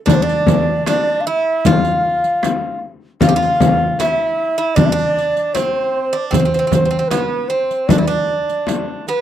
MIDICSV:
0, 0, Header, 1, 6, 480
1, 0, Start_track
1, 0, Tempo, 781250
1, 51, Time_signature, 4, 2, 24, 8
1, 5659, End_track
2, 0, Start_track
2, 0, Title_t, "Shakuhachi"
2, 0, Program_c, 0, 77
2, 45, Note_on_c, 0, 74, 96
2, 85, Note_on_c, 0, 72, 85
2, 94, Note_off_c, 0, 74, 0
2, 139, Note_on_c, 0, 74, 101
2, 148, Note_off_c, 0, 72, 0
2, 533, Note_off_c, 0, 74, 0
2, 544, Note_on_c, 0, 74, 93
2, 740, Note_on_c, 0, 77, 65
2, 749, Note_off_c, 0, 74, 0
2, 780, Note_on_c, 0, 76, 89
2, 789, Note_off_c, 0, 77, 0
2, 1025, Note_on_c, 0, 77, 96
2, 1034, Note_off_c, 0, 76, 0
2, 1738, Note_off_c, 0, 77, 0
2, 1977, Note_on_c, 0, 77, 115
2, 2457, Note_on_c, 0, 76, 94
2, 2467, Note_off_c, 0, 77, 0
2, 2919, Note_on_c, 0, 74, 85
2, 2928, Note_off_c, 0, 76, 0
2, 2983, Note_on_c, 0, 76, 75
2, 2992, Note_off_c, 0, 74, 0
2, 3009, Note_on_c, 0, 74, 96
2, 3018, Note_off_c, 0, 76, 0
2, 3406, Note_on_c, 0, 72, 89
2, 3415, Note_off_c, 0, 74, 0
2, 3864, Note_off_c, 0, 72, 0
2, 3867, Note_on_c, 0, 72, 86
2, 4348, Note_on_c, 0, 71, 73
2, 4357, Note_off_c, 0, 72, 0
2, 4598, Note_on_c, 0, 72, 77
2, 4607, Note_off_c, 0, 71, 0
2, 4839, Note_on_c, 0, 74, 80
2, 4848, Note_off_c, 0, 72, 0
2, 5445, Note_off_c, 0, 74, 0
2, 5580, Note_on_c, 0, 71, 81
2, 5659, Note_off_c, 0, 71, 0
2, 5659, End_track
3, 0, Start_track
3, 0, Title_t, "Bouzouki"
3, 0, Program_c, 1, 25
3, 36, Note_on_c, 1, 62, 80
3, 130, Note_off_c, 1, 62, 0
3, 137, Note_on_c, 1, 62, 74
3, 530, Note_off_c, 1, 62, 0
3, 537, Note_on_c, 1, 62, 79
3, 777, Note_off_c, 1, 62, 0
3, 779, Note_on_c, 1, 64, 76
3, 1021, Note_off_c, 1, 64, 0
3, 1023, Note_on_c, 1, 65, 84
3, 1713, Note_off_c, 1, 65, 0
3, 1977, Note_on_c, 1, 65, 87
3, 2017, Note_off_c, 1, 65, 0
3, 2019, Note_on_c, 1, 67, 76
3, 2059, Note_off_c, 1, 67, 0
3, 2064, Note_on_c, 1, 65, 87
3, 2453, Note_off_c, 1, 65, 0
3, 2456, Note_on_c, 1, 64, 80
3, 2806, Note_off_c, 1, 64, 0
3, 2813, Note_on_c, 1, 64, 75
3, 2923, Note_off_c, 1, 64, 0
3, 2926, Note_on_c, 1, 62, 85
3, 3016, Note_off_c, 1, 62, 0
3, 3024, Note_on_c, 1, 62, 84
3, 3390, Note_off_c, 1, 62, 0
3, 3408, Note_on_c, 1, 60, 75
3, 3765, Note_on_c, 1, 62, 69
3, 3780, Note_off_c, 1, 60, 0
3, 3875, Note_on_c, 1, 60, 65
3, 3891, Note_off_c, 1, 62, 0
3, 3922, Note_off_c, 1, 60, 0
3, 3929, Note_on_c, 1, 60, 47
3, 3957, Note_off_c, 1, 60, 0
3, 3964, Note_on_c, 1, 60, 49
3, 4013, Note_off_c, 1, 60, 0
3, 4020, Note_on_c, 1, 60, 48
3, 4041, Note_off_c, 1, 60, 0
3, 4048, Note_on_c, 1, 60, 52
3, 4091, Note_off_c, 1, 60, 0
3, 4098, Note_on_c, 1, 60, 47
3, 4138, Note_off_c, 1, 60, 0
3, 4146, Note_on_c, 1, 60, 47
3, 4202, Note_off_c, 1, 60, 0
3, 4211, Note_on_c, 1, 60, 44
3, 4236, Note_off_c, 1, 60, 0
3, 4243, Note_on_c, 1, 60, 51
3, 4287, Note_off_c, 1, 60, 0
3, 4294, Note_on_c, 1, 60, 47
3, 4345, Note_off_c, 1, 60, 0
3, 4370, Note_on_c, 1, 59, 70
3, 4604, Note_off_c, 1, 59, 0
3, 4606, Note_on_c, 1, 60, 62
3, 4856, Note_off_c, 1, 60, 0
3, 4856, Note_on_c, 1, 62, 70
3, 4893, Note_off_c, 1, 62, 0
3, 4904, Note_on_c, 1, 64, 55
3, 4941, Note_off_c, 1, 64, 0
3, 4961, Note_on_c, 1, 62, 67
3, 5559, Note_off_c, 1, 62, 0
3, 5582, Note_on_c, 1, 59, 76
3, 5659, Note_off_c, 1, 59, 0
3, 5659, End_track
4, 0, Start_track
4, 0, Title_t, "Darbuka"
4, 53, Note_on_c, 9, 64, 88
4, 115, Note_off_c, 9, 64, 0
4, 295, Note_on_c, 9, 64, 93
4, 356, Note_off_c, 9, 64, 0
4, 531, Note_on_c, 9, 63, 73
4, 592, Note_off_c, 9, 63, 0
4, 1014, Note_on_c, 9, 64, 83
4, 1075, Note_off_c, 9, 64, 0
4, 1375, Note_on_c, 9, 62, 25
4, 1436, Note_off_c, 9, 62, 0
4, 1492, Note_on_c, 9, 63, 73
4, 1554, Note_off_c, 9, 63, 0
4, 1974, Note_on_c, 9, 64, 86
4, 2035, Note_off_c, 9, 64, 0
4, 2220, Note_on_c, 9, 64, 87
4, 2282, Note_off_c, 9, 64, 0
4, 2460, Note_on_c, 9, 63, 70
4, 2522, Note_off_c, 9, 63, 0
4, 2934, Note_on_c, 9, 64, 81
4, 2995, Note_off_c, 9, 64, 0
4, 3294, Note_on_c, 9, 62, 26
4, 3355, Note_off_c, 9, 62, 0
4, 3413, Note_on_c, 9, 63, 62
4, 3475, Note_off_c, 9, 63, 0
4, 3890, Note_on_c, 9, 64, 87
4, 3951, Note_off_c, 9, 64, 0
4, 4010, Note_on_c, 9, 62, 26
4, 4072, Note_off_c, 9, 62, 0
4, 4129, Note_on_c, 9, 64, 88
4, 4191, Note_off_c, 9, 64, 0
4, 4371, Note_on_c, 9, 63, 60
4, 4432, Note_off_c, 9, 63, 0
4, 4734, Note_on_c, 9, 62, 26
4, 4796, Note_off_c, 9, 62, 0
4, 4848, Note_on_c, 9, 64, 86
4, 4909, Note_off_c, 9, 64, 0
4, 5100, Note_on_c, 9, 62, 24
4, 5162, Note_off_c, 9, 62, 0
4, 5334, Note_on_c, 9, 63, 54
4, 5395, Note_off_c, 9, 63, 0
4, 5573, Note_on_c, 9, 62, 24
4, 5635, Note_off_c, 9, 62, 0
4, 5659, End_track
5, 0, Start_track
5, 0, Title_t, "Frame drum"
5, 44, Note_on_c, 9, 64, 85
5, 106, Note_off_c, 9, 64, 0
5, 286, Note_on_c, 9, 64, 84
5, 348, Note_off_c, 9, 64, 0
5, 532, Note_on_c, 9, 64, 69
5, 593, Note_off_c, 9, 64, 0
5, 1018, Note_on_c, 9, 64, 93
5, 1080, Note_off_c, 9, 64, 0
5, 1494, Note_on_c, 9, 64, 70
5, 1555, Note_off_c, 9, 64, 0
5, 1970, Note_on_c, 9, 64, 98
5, 2031, Note_off_c, 9, 64, 0
5, 2214, Note_on_c, 9, 64, 95
5, 2276, Note_off_c, 9, 64, 0
5, 2452, Note_on_c, 9, 64, 63
5, 2513, Note_off_c, 9, 64, 0
5, 2932, Note_on_c, 9, 64, 85
5, 2993, Note_off_c, 9, 64, 0
5, 3410, Note_on_c, 9, 64, 64
5, 3472, Note_off_c, 9, 64, 0
5, 3886, Note_on_c, 9, 64, 78
5, 3947, Note_off_c, 9, 64, 0
5, 4126, Note_on_c, 9, 64, 76
5, 4187, Note_off_c, 9, 64, 0
5, 4366, Note_on_c, 9, 64, 68
5, 4427, Note_off_c, 9, 64, 0
5, 4846, Note_on_c, 9, 64, 87
5, 4907, Note_off_c, 9, 64, 0
5, 5325, Note_on_c, 9, 64, 77
5, 5387, Note_off_c, 9, 64, 0
5, 5659, End_track
6, 0, Start_track
6, 0, Title_t, "Riq"
6, 58, Note_on_c, 9, 54, 59
6, 119, Note_off_c, 9, 54, 0
6, 180, Note_on_c, 9, 54, 19
6, 241, Note_off_c, 9, 54, 0
6, 296, Note_on_c, 9, 54, 55
6, 358, Note_off_c, 9, 54, 0
6, 534, Note_on_c, 9, 54, 44
6, 596, Note_off_c, 9, 54, 0
6, 1013, Note_on_c, 9, 54, 51
6, 1075, Note_off_c, 9, 54, 0
6, 1134, Note_on_c, 9, 54, 18
6, 1196, Note_off_c, 9, 54, 0
6, 1377, Note_on_c, 9, 54, 19
6, 1438, Note_off_c, 9, 54, 0
6, 1501, Note_on_c, 9, 54, 45
6, 1562, Note_off_c, 9, 54, 0
6, 1978, Note_on_c, 9, 54, 54
6, 2040, Note_off_c, 9, 54, 0
6, 2104, Note_on_c, 9, 54, 17
6, 2165, Note_off_c, 9, 54, 0
6, 2221, Note_on_c, 9, 54, 51
6, 2282, Note_off_c, 9, 54, 0
6, 2460, Note_on_c, 9, 54, 43
6, 2521, Note_off_c, 9, 54, 0
6, 2935, Note_on_c, 9, 54, 53
6, 2996, Note_off_c, 9, 54, 0
6, 3062, Note_on_c, 9, 54, 17
6, 3124, Note_off_c, 9, 54, 0
6, 3185, Note_on_c, 9, 54, 16
6, 3247, Note_off_c, 9, 54, 0
6, 3297, Note_on_c, 9, 54, 18
6, 3359, Note_off_c, 9, 54, 0
6, 3421, Note_on_c, 9, 54, 43
6, 3482, Note_off_c, 9, 54, 0
6, 3897, Note_on_c, 9, 54, 62
6, 3958, Note_off_c, 9, 54, 0
6, 4017, Note_on_c, 9, 54, 16
6, 4078, Note_off_c, 9, 54, 0
6, 4133, Note_on_c, 9, 54, 59
6, 4194, Note_off_c, 9, 54, 0
6, 4370, Note_on_c, 9, 54, 43
6, 4431, Note_off_c, 9, 54, 0
6, 4735, Note_on_c, 9, 54, 17
6, 4797, Note_off_c, 9, 54, 0
6, 4861, Note_on_c, 9, 54, 55
6, 4922, Note_off_c, 9, 54, 0
6, 4978, Note_on_c, 9, 54, 17
6, 5039, Note_off_c, 9, 54, 0
6, 5219, Note_on_c, 9, 54, 18
6, 5281, Note_off_c, 9, 54, 0
6, 5337, Note_on_c, 9, 54, 40
6, 5398, Note_off_c, 9, 54, 0
6, 5578, Note_on_c, 9, 54, 19
6, 5639, Note_off_c, 9, 54, 0
6, 5659, End_track
0, 0, End_of_file